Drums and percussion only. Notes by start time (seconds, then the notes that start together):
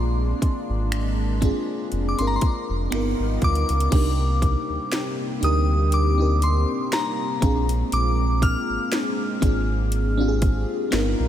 0.42 kick, closed hi-hat
0.92 finger snap, closed hi-hat
1.42 kick, closed hi-hat
1.92 closed hi-hat
2.19 closed hi-hat
2.41 kick, closed hi-hat
2.92 finger snap, closed hi-hat
3.42 kick, closed hi-hat
3.55 closed hi-hat
3.69 closed hi-hat
3.80 closed hi-hat
3.92 kick, closed hi-hat, crash
4.42 kick, closed hi-hat
4.92 snare, closed hi-hat
5.43 closed hi-hat
5.92 closed hi-hat
6.42 closed hi-hat
6.92 snare, closed hi-hat
7.42 kick, closed hi-hat
7.69 closed hi-hat
7.92 closed hi-hat
8.42 kick, closed hi-hat
8.92 snare, closed hi-hat
9.42 kick, closed hi-hat
9.92 closed hi-hat
10.42 kick, closed hi-hat
10.92 snare, closed hi-hat